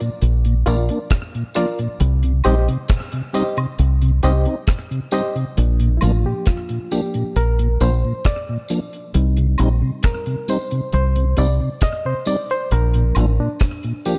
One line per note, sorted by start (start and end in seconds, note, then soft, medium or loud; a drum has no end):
0.00 0.10 A#2 medium
0.00 closed hi-hat medium
0.21 0.63 A#1 medium
0.21 closed hi-hat medium
0.45 0.54 A#2 medium
0.45 closed hi-hat medium
0.66 0.88 A#1 loud
0.66 0.76 F3 medium
0.66 0.77 A#3 medium
0.66 0.77 D4 medium
0.66 0.89 F4 loud
0.66 0.89 A#4 medium
0.66 0.89 D5 loud
0.66 closed hi-hat medium
0.66 tambourine medium
0.89 0.99 A#3 medium
0.89 0.99 D4 medium
0.89 0.98 A#4 soft
0.89 0.98 D5 soft
0.89 closed hi-hat soft
1.10 kick loud
1.10 cross-stick loud
1.10 closed hi-hat loud
1.35 1.44 A#2 medium
1.35 closed hi-hat soft
1.54 1.66 F3 medium
1.54 1.66 A#3 medium
1.54 1.66 D4 medium
1.54 1.78 F4 medium
1.54 1.78 A#4 medium
1.54 1.78 D5 loud
1.54 cross-stick medium
1.54 closed hi-hat medium
1.54 tambourine medium
1.79 1.88 A#2 medium
1.79 closed hi-hat soft
2.00 2.42 C2 loud
2.00 closed hi-hat loud
2.23 2.33 C3 medium
2.23 closed hi-hat medium
2.44 2.67 A#1 medium
2.44 2.55 G3 medium
2.44 2.55 C4 medium
2.44 2.55 D#4 medium
2.44 2.67 G4 loud
2.44 2.67 C5 medium
2.44 2.68 D#5 loud
2.44 closed hi-hat medium
2.44 tambourine medium
2.44 high woodblock medium
2.68 2.77 C3 medium
2.68 closed hi-hat medium
2.88 kick loud
2.88 cross-stick loud
2.88 closed hi-hat medium
3.12 3.22 C3 soft
3.12 closed hi-hat medium
3.33 3.44 G3 medium
3.33 3.44 C4 medium
3.33 3.44 D#4 medium
3.33 3.57 G4 medium
3.33 3.57 C5 medium
3.33 3.57 D#5 loud
3.33 closed hi-hat medium
3.33 tambourine medium
3.57 3.66 C3 medium
3.57 closed hi-hat soft
3.57 high woodblock medium
3.79 4.20 C2 medium
3.79 closed hi-hat medium
4.02 4.11 C3 soft
4.02 closed hi-hat medium
4.23 4.45 C2 medium
4.23 4.33 G3 medium
4.23 4.33 C4 medium
4.23 4.34 D#4 medium
4.23 4.46 G4 medium
4.23 4.46 C5 medium
4.23 4.46 D#5 loud
4.23 closed hi-hat medium
4.23 tambourine medium
4.45 4.56 C4 medium
4.45 4.56 D#4 medium
4.45 4.55 C5 soft
4.45 4.55 D#5 soft
4.45 closed hi-hat soft
4.67 kick loud
4.67 cross-stick loud
4.67 closed hi-hat medium
4.91 5.00 C3 medium
4.91 closed hi-hat medium
5.11 5.22 G3 medium
5.11 5.22 C4 medium
5.11 5.22 D#4 medium
5.11 5.35 G4 medium
5.11 5.35 C5 medium
5.11 5.36 D#5 loud
5.11 closed hi-hat medium
5.11 tambourine medium
5.36 5.45 C3 medium
5.36 closed hi-hat soft
5.57 5.99 A#1 loud
5.57 6.87 F3 medium
5.57 6.87 A#3 soft
5.57 6.88 D4 medium
5.57 closed hi-hat medium
5.80 5.89 A#2 medium
5.80 closed hi-hat medium
5.97 6.02 E4 medium
5.97 tambourine soft
5.97 high woodblock medium
6.02 6.24 A1 medium
6.02 6.12 F3 medium
6.02 6.12 A#3 medium
6.02 6.12 D4 medium
6.02 6.26 F4 medium
6.02 closed hi-hat medium
6.25 6.34 A#2 medium
6.25 6.47 G4 medium
6.46 6.93 F4 medium
6.46 kick loud
6.46 cross-stick loud
6.46 closed hi-hat loud
6.69 6.79 A#2 medium
6.69 closed hi-hat medium
6.91 7.01 F3 medium
6.91 7.32 F3 soft
6.91 7.01 A#3 medium
6.91 7.32 A#3 soft
6.91 7.01 D4 medium
6.91 7.32 D4 soft
6.91 7.37 G4 medium
6.91 closed hi-hat medium
6.91 tambourine medium
7.14 7.24 A#2 medium
7.14 closed hi-hat soft
7.36 7.77 A#1 medium
7.36 7.82 A#4 loud
7.36 closed hi-hat medium
7.59 7.68 A#2 medium
7.59 closed hi-hat medium
7.80 8.02 A#1 loud
7.80 7.90 F3 medium
7.80 7.91 A#3 medium
7.80 7.91 D4 medium
7.80 8.27 C5 medium
7.80 closed hi-hat medium
7.80 tambourine medium
8.05 8.13 A#2 medium
8.25 9.11 D5 loud
8.25 kick loud
8.25 cross-stick loud
8.25 closed hi-hat loud
8.49 8.58 A#2 medium
8.68 8.80 F3 medium
8.68 8.80 A#3 medium
8.68 8.80 D4 medium
8.68 closed hi-hat medium
8.68 tambourine medium
8.93 closed hi-hat soft
9.14 9.56 C2 loud
9.14 12.67 G3 medium
9.14 12.67 C4 soft
9.14 12.68 D#4 medium
9.14 closed hi-hat loud
9.37 9.47 C3 medium
9.37 closed hi-hat medium
9.58 9.81 A#1 medium
9.58 9.69 G3 medium
9.58 9.69 C4 medium
9.58 9.69 D#4 medium
9.58 closed hi-hat medium
9.58 tambourine soft
9.58 high woodblock medium
9.82 9.91 C3 medium
10.03 10.50 A#4 medium
10.03 kick loud
10.03 cross-stick loud
10.03 closed hi-hat medium
10.26 10.36 C3 medium
10.26 closed hi-hat medium
10.48 10.58 G3 medium
10.48 10.58 C4 medium
10.48 10.58 D#4 medium
10.48 10.93 C5 medium
10.48 closed hi-hat medium
10.48 tambourine medium
10.71 10.81 C3 medium
10.71 closed hi-hat medium
10.93 11.35 C2 loud
10.93 11.39 C5 medium
10.93 closed hi-hat medium
11.16 11.25 C3 medium
11.16 closed hi-hat medium
11.37 11.59 C2 medium
11.37 11.47 G3 medium
11.37 11.47 C4 medium
11.37 11.47 D#4 medium
11.37 11.79 D5 loud
11.37 closed hi-hat medium
11.37 tambourine soft
11.60 11.69 C3 medium
11.81 12.04 D#5 loud
11.81 kick loud
11.81 cross-stick loud
11.81 closed hi-hat loud
12.05 12.14 C3 medium
12.05 12.25 C5 medium
12.25 12.36 G3 medium
12.25 12.37 C4 medium
12.25 12.37 D#4 medium
12.25 12.51 D5 loud
12.25 closed hi-hat medium
12.25 tambourine medium
12.50 12.72 C5 loud
12.50 closed hi-hat soft
12.71 13.13 A#1 loud
12.71 13.31 F3 medium
12.71 13.32 A#3 soft
12.71 13.32 D4 medium
12.71 13.42 A#4 medium
12.71 closed hi-hat medium
12.94 13.04 A#2 medium
12.94 closed hi-hat medium
13.15 13.38 A1 medium
13.15 13.26 F3 medium
13.15 13.26 A#3 medium
13.15 13.26 D4 medium
13.15 closed hi-hat medium
13.15 tambourine soft
13.15 high woodblock medium
13.40 13.49 A#2 medium
13.40 14.05 D4 medium
13.60 kick loud
13.60 cross-stick loud
13.60 closed hi-hat medium
13.83 13.93 A#2 medium
13.83 closed hi-hat soft
14.05 14.19 F3 soft
14.05 14.15 F3 medium
14.05 14.15 A#3 medium
14.05 14.19 A#3 soft
14.05 14.19 D4 medium
14.05 14.15 D4 medium
14.05 14.19 G4 medium
14.05 closed hi-hat medium
14.05 tambourine medium